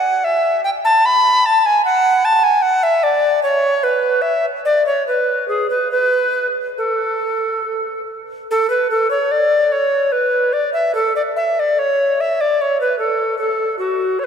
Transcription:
0, 0, Header, 1, 2, 480
1, 0, Start_track
1, 0, Key_signature, 3, "major"
1, 0, Tempo, 800000
1, 626, Time_signature, 3, 2, 24, 8
1, 2543, Tempo, 820793
1, 3023, Tempo, 855920
1, 4943, Tempo, 823045
1, 6863, Tempo, 805369
1, 8346, End_track
2, 0, Start_track
2, 0, Title_t, "Recorder"
2, 0, Program_c, 0, 74
2, 0, Note_on_c, 0, 78, 85
2, 146, Note_on_c, 0, 76, 84
2, 155, Note_off_c, 0, 78, 0
2, 381, Note_off_c, 0, 76, 0
2, 384, Note_on_c, 0, 79, 94
2, 420, Note_off_c, 0, 79, 0
2, 508, Note_on_c, 0, 81, 95
2, 633, Note_on_c, 0, 83, 99
2, 642, Note_off_c, 0, 81, 0
2, 874, Note_on_c, 0, 81, 93
2, 883, Note_off_c, 0, 83, 0
2, 995, Note_on_c, 0, 80, 88
2, 1004, Note_off_c, 0, 81, 0
2, 1107, Note_off_c, 0, 80, 0
2, 1110, Note_on_c, 0, 78, 104
2, 1349, Note_on_c, 0, 81, 94
2, 1358, Note_off_c, 0, 78, 0
2, 1461, Note_on_c, 0, 80, 88
2, 1470, Note_off_c, 0, 81, 0
2, 1573, Note_on_c, 0, 78, 94
2, 1582, Note_off_c, 0, 80, 0
2, 1699, Note_on_c, 0, 76, 97
2, 1708, Note_off_c, 0, 78, 0
2, 1820, Note_on_c, 0, 74, 88
2, 1829, Note_off_c, 0, 76, 0
2, 2055, Note_off_c, 0, 74, 0
2, 2059, Note_on_c, 0, 73, 100
2, 2301, Note_on_c, 0, 71, 78
2, 2310, Note_off_c, 0, 73, 0
2, 2530, Note_on_c, 0, 76, 85
2, 2539, Note_off_c, 0, 71, 0
2, 2670, Note_off_c, 0, 76, 0
2, 2785, Note_on_c, 0, 74, 84
2, 2903, Note_off_c, 0, 74, 0
2, 2908, Note_on_c, 0, 73, 75
2, 3024, Note_off_c, 0, 73, 0
2, 3032, Note_on_c, 0, 71, 75
2, 3257, Note_off_c, 0, 71, 0
2, 3260, Note_on_c, 0, 68, 77
2, 3378, Note_off_c, 0, 68, 0
2, 3382, Note_on_c, 0, 71, 66
2, 3499, Note_off_c, 0, 71, 0
2, 3502, Note_on_c, 0, 71, 86
2, 3813, Note_off_c, 0, 71, 0
2, 3988, Note_on_c, 0, 69, 64
2, 4683, Note_off_c, 0, 69, 0
2, 4958, Note_on_c, 0, 69, 90
2, 5065, Note_off_c, 0, 69, 0
2, 5069, Note_on_c, 0, 71, 75
2, 5185, Note_off_c, 0, 71, 0
2, 5191, Note_on_c, 0, 69, 78
2, 5302, Note_off_c, 0, 69, 0
2, 5306, Note_on_c, 0, 73, 72
2, 5427, Note_on_c, 0, 74, 84
2, 5436, Note_off_c, 0, 73, 0
2, 5665, Note_on_c, 0, 73, 72
2, 5674, Note_off_c, 0, 74, 0
2, 5898, Note_on_c, 0, 71, 72
2, 5907, Note_off_c, 0, 73, 0
2, 6137, Note_on_c, 0, 74, 76
2, 6145, Note_off_c, 0, 71, 0
2, 6251, Note_off_c, 0, 74, 0
2, 6255, Note_on_c, 0, 76, 76
2, 6377, Note_off_c, 0, 76, 0
2, 6381, Note_on_c, 0, 69, 81
2, 6500, Note_off_c, 0, 69, 0
2, 6503, Note_on_c, 0, 74, 69
2, 6538, Note_off_c, 0, 74, 0
2, 6623, Note_on_c, 0, 76, 72
2, 6758, Note_on_c, 0, 74, 70
2, 6766, Note_off_c, 0, 76, 0
2, 6871, Note_on_c, 0, 73, 83
2, 6880, Note_off_c, 0, 74, 0
2, 7120, Note_on_c, 0, 76, 77
2, 7129, Note_off_c, 0, 73, 0
2, 7240, Note_on_c, 0, 74, 76
2, 7249, Note_off_c, 0, 76, 0
2, 7363, Note_on_c, 0, 73, 73
2, 7372, Note_off_c, 0, 74, 0
2, 7474, Note_off_c, 0, 73, 0
2, 7478, Note_on_c, 0, 71, 72
2, 7583, Note_off_c, 0, 71, 0
2, 7586, Note_on_c, 0, 69, 69
2, 7818, Note_off_c, 0, 69, 0
2, 7822, Note_on_c, 0, 69, 79
2, 8058, Note_off_c, 0, 69, 0
2, 8062, Note_on_c, 0, 66, 74
2, 8304, Note_on_c, 0, 73, 83
2, 8313, Note_off_c, 0, 66, 0
2, 8338, Note_off_c, 0, 73, 0
2, 8346, End_track
0, 0, End_of_file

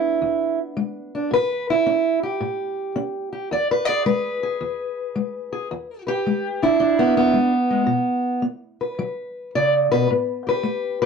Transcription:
0, 0, Header, 1, 2, 480
1, 0, Start_track
1, 0, Tempo, 548446
1, 1147, Time_signature, 4, 2, 24, 8
1, 9676, End_track
2, 0, Start_track
2, 0, Title_t, "Steel-string acoustic guitar"
2, 0, Program_c, 0, 25
2, 0, Note_on_c, 0, 56, 66
2, 0, Note_on_c, 0, 59, 48
2, 0, Note_on_c, 0, 62, 47
2, 0, Note_on_c, 0, 64, 77
2, 161, Note_off_c, 0, 56, 0
2, 189, Note_on_c, 0, 40, 63
2, 512, Note_off_c, 0, 64, 0
2, 637, Note_off_c, 0, 40, 0
2, 671, Note_on_c, 0, 56, 64
2, 995, Note_off_c, 0, 62, 0
2, 1005, Note_on_c, 0, 62, 47
2, 1117, Note_off_c, 0, 56, 0
2, 1135, Note_off_c, 0, 59, 0
2, 1137, Note_off_c, 0, 62, 0
2, 1145, Note_on_c, 0, 45, 73
2, 1169, Note_on_c, 0, 71, 91
2, 1479, Note_off_c, 0, 71, 0
2, 1490, Note_on_c, 0, 64, 78
2, 1594, Note_off_c, 0, 45, 0
2, 1631, Note_on_c, 0, 61, 68
2, 1951, Note_off_c, 0, 64, 0
2, 1954, Note_on_c, 0, 67, 49
2, 2076, Note_off_c, 0, 61, 0
2, 2105, Note_on_c, 0, 45, 65
2, 2552, Note_off_c, 0, 45, 0
2, 2588, Note_on_c, 0, 61, 65
2, 2900, Note_off_c, 0, 67, 0
2, 2911, Note_on_c, 0, 67, 49
2, 3034, Note_off_c, 0, 61, 0
2, 3047, Note_off_c, 0, 67, 0
2, 3074, Note_on_c, 0, 40, 75
2, 3085, Note_on_c, 0, 74, 87
2, 3234, Note_off_c, 0, 74, 0
2, 3249, Note_on_c, 0, 71, 91
2, 3372, Note_off_c, 0, 71, 0
2, 3372, Note_on_c, 0, 74, 81
2, 3403, Note_on_c, 0, 68, 52
2, 3516, Note_off_c, 0, 40, 0
2, 3537, Note_off_c, 0, 74, 0
2, 3552, Note_on_c, 0, 56, 64
2, 3553, Note_on_c, 0, 71, 88
2, 3875, Note_off_c, 0, 68, 0
2, 3878, Note_on_c, 0, 68, 51
2, 3996, Note_off_c, 0, 56, 0
2, 4031, Note_on_c, 0, 40, 64
2, 4474, Note_off_c, 0, 40, 0
2, 4512, Note_on_c, 0, 56, 62
2, 4825, Note_off_c, 0, 68, 0
2, 4836, Note_on_c, 0, 68, 52
2, 4955, Note_off_c, 0, 56, 0
2, 4969, Note_off_c, 0, 68, 0
2, 4998, Note_on_c, 0, 40, 76
2, 5299, Note_off_c, 0, 71, 0
2, 5310, Note_on_c, 0, 71, 48
2, 5323, Note_on_c, 0, 67, 91
2, 5438, Note_off_c, 0, 40, 0
2, 5483, Note_on_c, 0, 56, 66
2, 5792, Note_off_c, 0, 67, 0
2, 5797, Note_on_c, 0, 62, 47
2, 5800, Note_off_c, 0, 71, 0
2, 5804, Note_on_c, 0, 64, 94
2, 5921, Note_off_c, 0, 56, 0
2, 5938, Note_off_c, 0, 62, 0
2, 5950, Note_on_c, 0, 40, 61
2, 5950, Note_on_c, 0, 62, 79
2, 6118, Note_on_c, 0, 59, 100
2, 6265, Note_off_c, 0, 59, 0
2, 6276, Note_on_c, 0, 59, 87
2, 6395, Note_off_c, 0, 40, 0
2, 6420, Note_on_c, 0, 56, 65
2, 6433, Note_off_c, 0, 64, 0
2, 6586, Note_off_c, 0, 62, 0
2, 6732, Note_off_c, 0, 56, 0
2, 6743, Note_on_c, 0, 56, 46
2, 6883, Note_off_c, 0, 56, 0
2, 6884, Note_on_c, 0, 47, 80
2, 7343, Note_off_c, 0, 47, 0
2, 7360, Note_off_c, 0, 59, 0
2, 7370, Note_on_c, 0, 59, 59
2, 7710, Note_on_c, 0, 71, 47
2, 7826, Note_off_c, 0, 59, 0
2, 7865, Note_on_c, 0, 54, 70
2, 8315, Note_off_c, 0, 54, 0
2, 8348, Note_off_c, 0, 71, 0
2, 8361, Note_on_c, 0, 49, 67
2, 8361, Note_on_c, 0, 74, 98
2, 8514, Note_off_c, 0, 74, 0
2, 8677, Note_off_c, 0, 49, 0
2, 8678, Note_on_c, 0, 71, 94
2, 8684, Note_on_c, 0, 47, 60
2, 8834, Note_off_c, 0, 71, 0
2, 8836, Note_off_c, 0, 47, 0
2, 8844, Note_on_c, 0, 45, 69
2, 9161, Note_on_c, 0, 67, 49
2, 9177, Note_on_c, 0, 71, 80
2, 9286, Note_off_c, 0, 45, 0
2, 9306, Note_on_c, 0, 57, 67
2, 9632, Note_off_c, 0, 71, 0
2, 9638, Note_off_c, 0, 67, 0
2, 9643, Note_on_c, 0, 71, 81
2, 9676, Note_off_c, 0, 57, 0
2, 9676, Note_off_c, 0, 71, 0
2, 9676, End_track
0, 0, End_of_file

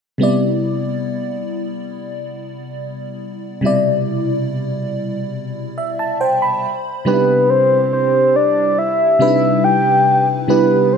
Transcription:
0, 0, Header, 1, 3, 480
1, 0, Start_track
1, 0, Key_signature, 0, "major"
1, 0, Tempo, 857143
1, 114, Time_signature, 4, 2, 24, 8
1, 6146, End_track
2, 0, Start_track
2, 0, Title_t, "Soft synth lead"
2, 0, Program_c, 0, 80
2, 3960, Note_on_c, 0, 71, 102
2, 4199, Note_on_c, 0, 72, 99
2, 4207, Note_off_c, 0, 71, 0
2, 4436, Note_off_c, 0, 72, 0
2, 4440, Note_on_c, 0, 72, 96
2, 4681, Note_on_c, 0, 74, 103
2, 4689, Note_off_c, 0, 72, 0
2, 4919, Note_on_c, 0, 76, 103
2, 4927, Note_off_c, 0, 74, 0
2, 5154, Note_off_c, 0, 76, 0
2, 5158, Note_on_c, 0, 76, 101
2, 5399, Note_on_c, 0, 79, 105
2, 5408, Note_off_c, 0, 76, 0
2, 5756, Note_off_c, 0, 79, 0
2, 5878, Note_on_c, 0, 71, 97
2, 6080, Note_off_c, 0, 71, 0
2, 6080, Note_on_c, 0, 71, 71
2, 6120, Note_on_c, 0, 72, 96
2, 6128, Note_off_c, 0, 71, 0
2, 6146, Note_off_c, 0, 72, 0
2, 6146, End_track
3, 0, Start_track
3, 0, Title_t, "FM electric piano"
3, 0, Program_c, 1, 5
3, 102, Note_on_c, 1, 48, 63
3, 110, Note_on_c, 1, 55, 59
3, 116, Note_on_c, 1, 59, 60
3, 124, Note_on_c, 1, 64, 58
3, 131, Note_on_c, 1, 74, 72
3, 210, Control_c, 1, 64, 127
3, 2005, Note_off_c, 1, 48, 0
3, 2009, Note_off_c, 1, 55, 0
3, 2013, Note_off_c, 1, 59, 0
3, 2017, Note_off_c, 1, 64, 0
3, 2020, Note_off_c, 1, 74, 0
3, 2023, Note_on_c, 1, 48, 67
3, 2029, Note_on_c, 1, 55, 61
3, 2037, Note_on_c, 1, 47, 60
3, 2044, Note_on_c, 1, 64, 61
3, 2052, Note_on_c, 1, 74, 74
3, 3235, Note_on_c, 1, 76, 61
3, 3348, Note_off_c, 1, 76, 0
3, 3356, Note_on_c, 1, 81, 62
3, 3469, Note_off_c, 1, 81, 0
3, 3476, Note_on_c, 1, 72, 64
3, 3476, Note_on_c, 1, 79, 66
3, 3589, Note_off_c, 1, 79, 0
3, 3596, Note_on_c, 1, 83, 61
3, 3686, Note_off_c, 1, 48, 0
3, 3689, Note_off_c, 1, 55, 0
3, 3693, Note_off_c, 1, 47, 0
3, 3697, Note_off_c, 1, 64, 0
3, 3700, Note_off_c, 1, 74, 0
3, 3721, Control_c, 1, 64, 0
3, 3805, Control_c, 1, 64, 127
3, 3823, Note_off_c, 1, 83, 0
3, 3932, Note_off_c, 1, 72, 0
3, 3948, Note_on_c, 1, 48, 68
3, 3952, Note_on_c, 1, 55, 65
3, 3955, Note_on_c, 1, 62, 61
3, 3959, Note_on_c, 1, 63, 47
3, 3960, Control_c, 1, 64, 0
3, 3963, Note_on_c, 1, 67, 71
3, 3993, Note_off_c, 1, 63, 0
3, 3996, Note_on_c, 1, 64, 60
3, 4060, Control_c, 1, 64, 127
3, 4560, Note_off_c, 1, 48, 0
3, 4562, Note_off_c, 1, 55, 0
3, 4564, Note_off_c, 1, 62, 0
3, 4567, Note_off_c, 1, 67, 0
3, 4584, Note_off_c, 1, 64, 0
3, 5147, Note_on_c, 1, 48, 71
3, 5151, Note_on_c, 1, 55, 65
3, 5155, Note_on_c, 1, 62, 65
3, 5158, Note_on_c, 1, 63, 54
3, 5163, Note_on_c, 1, 71, 76
3, 5192, Note_off_c, 1, 63, 0
3, 5195, Note_on_c, 1, 64, 68
3, 5607, Note_off_c, 1, 48, 0
3, 5609, Note_off_c, 1, 55, 0
3, 5611, Note_off_c, 1, 62, 0
3, 5615, Note_off_c, 1, 71, 0
3, 5631, Note_off_c, 1, 64, 0
3, 5868, Note_on_c, 1, 48, 66
3, 5871, Note_on_c, 1, 55, 64
3, 5875, Note_on_c, 1, 62, 64
3, 5879, Note_on_c, 1, 64, 63
3, 5882, Note_on_c, 1, 67, 75
3, 6146, Note_off_c, 1, 48, 0
3, 6146, Note_off_c, 1, 55, 0
3, 6146, Note_off_c, 1, 62, 0
3, 6146, Note_off_c, 1, 64, 0
3, 6146, Note_off_c, 1, 67, 0
3, 6146, End_track
0, 0, End_of_file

